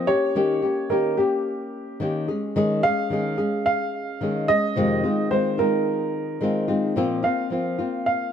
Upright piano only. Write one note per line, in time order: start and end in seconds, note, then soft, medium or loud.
0.00 0.10 D#5 loud
0.07 0.93 C#5 loud
0.90 1.19 A#4 medium
1.17 2.24 G4 medium
2.83 3.64 F5 loud
3.66 4.51 F5 loud
4.48 5.27 D#5 loud
5.31 5.59 C5 medium
5.59 6.65 A#4 medium
7.24 8.05 F5 medium
8.06 8.33 F5 medium